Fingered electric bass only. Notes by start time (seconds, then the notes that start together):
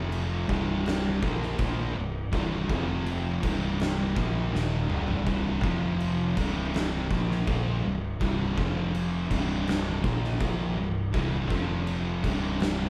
Already playing: F1
0.49 C1
1.23 A#1
1.59 A#1
1.96 C1
2.33 C1
2.69 F1
3.43 C1
4.17 A#1
4.54 D#1
4.90 C1
5.27 C1
5.64 F1
6.37 C1
7.11 A#1
7.47 A#1
7.84 C1
8.21 C1
8.58 F1
9.31 C1
10.04 A#1
10.41 A#1
10.77 C1
11.14 C1
11.51 F1
12.24 C1